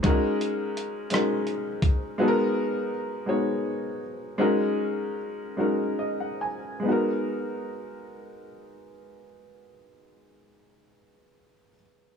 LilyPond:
<<
  \new Staff \with { instrumentName = "Grand piano" } { \time 6/8 \key gis \minor \tempo 4. = 49 << { r2. | r2. | r2 dis''16 fis''16 gis''8 | r2. |
r2. | } \\ { <gis cis' dis' fis' ais'>4 r8 <gis cis' dis' fis' ais'>4 r8 | <gis b dis' fis' a' ais'>4 r8 <gis b dis' fis' cis''>4 r8 | <gis cis' dis' fis' ais'>4 r8 <gis cis' dis' fis' ais'>4 r8 | <gis b dis' fis' ais'>2.~ |
<gis b dis' fis' ais'>2. | } >> }
  \new DrumStaff \with { instrumentName = "Drums" } \drummode { \time 6/8 <hh bd>8 hh8 hh8 <hh ss>8 hh8 <hh bd>8 | r4. r4. | r4. r4. | r4. r4. |
r4. r4. | }
>>